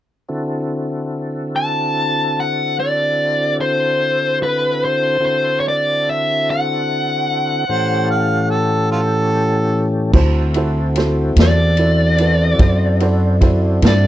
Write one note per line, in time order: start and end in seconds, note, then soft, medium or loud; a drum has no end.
0.29 5.18 D3 soft
0.29 5.17 C4 soft
0.29 5.18 E4 soft
0.29 5.17 F#4 soft
0.29 5.17 A4 soft
1.56 2.39 A5 medium
2.40 2.76 F#5 medium
2.80 3.56 D5 medium
3.61 4.37 C5 medium
4.43 4.84 B4 medium
4.85 5.24 C5 medium
5.20 7.64 D3 soft
5.20 7.65 C4 medium
5.20 7.65 E4 soft
5.20 7.65 F#4 medium
5.20 7.65 A4 medium
5.26 5.59 C5 medium
5.60 5.65 C#5 soft
5.68 6.08 D5 medium
6.09 6.49 E5 medium
6.51 9.72 F#5 medium
7.69 10.12 A2 soft
7.69 10.12 E3 soft
7.69 10.12 C#4 medium
7.69 10.12 G4 soft
7.69 10.12 A4 soft
7.69 8.09 C5 medium
8.11 8.52 F5 medium
8.50 8.90 A4 medium
8.92 9.00 F4 soft
8.92 9.91 A4 medium
10.13 11.33 D2 medium
10.13 14.07 C4 medium
10.13 10.44 E4 medium
10.13 14.07 E4 medium
10.13 10.45 F#4 medium
10.13 14.07 F#4 medium
10.13 10.45 A4 medium
10.13 14.07 A4 medium
10.13 10.45 C5 medium
10.13 kick medium
10.13 crash medium
10.54 10.86 E4 medium
10.54 10.86 F#4 medium
10.54 10.87 A4 soft
10.54 10.87 C5 medium
10.54 ride soft
10.96 11.27 E4 medium
10.96 11.27 F#4 medium
10.96 11.28 A4 soft
10.96 11.28 C5 medium
10.96 snare soft
10.96 ride medium
11.36 12.56 E2 medium
11.36 11.68 E4 soft
11.36 11.68 F#4 soft
11.36 11.69 A4 soft
11.36 11.69 D5 medium
11.36 snare medium
11.36 ride medium
11.42 13.81 D5 medium
11.77 12.09 E4 soft
11.77 12.09 F#4 soft
11.77 12.09 A4 soft
11.77 12.10 D5 medium
11.77 ride medium
12.18 12.50 E4 soft
12.18 12.50 F#4 soft
12.18 12.50 A4 soft
12.18 12.51 B4 soft
12.18 ride soft
12.59 13.79 F#2 medium
12.59 12.90 E4 medium
12.59 12.90 F#4 soft
12.59 12.91 A4 soft
12.59 12.91 C5 medium
12.59 kick medium
12.59 ride medium
13.00 13.31 E4 medium
13.00 13.32 F#4 medium
13.00 13.32 A4 medium
13.00 13.32 C5 medium
13.00 ride medium
13.41 13.72 E4 medium
13.41 13.72 F#4 medium
13.41 13.73 A4 soft
13.41 13.73 C5 medium
13.41 kick medium
13.41 ride medium
13.82 14.07 G2 medium
13.82 14.07 E4 soft
13.82 14.07 F#4 soft
13.82 14.07 A4 soft
13.82 14.07 C5 medium
13.82 snare medium
13.82 ride medium
13.88 14.07 D5 medium